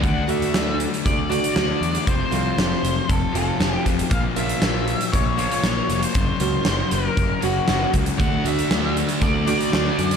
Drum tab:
HH |x-xxx-xxx-xxx-xx|x-x-x-x-x-x-x-xx|x-xxx-xxx-xxx-xx|x-x-x-x-x-x-x-xx|
SD |----o-------o---|----o-------o-o-|----o-------o-o-|----o-------o---|
BD |o-------o-------|o-------o-----o-|o-------o-------|o-------o-----o-|

HH |x-xxx-xxx-xxx-xx|
SD |----o-------o---|
BD |o-------o-------|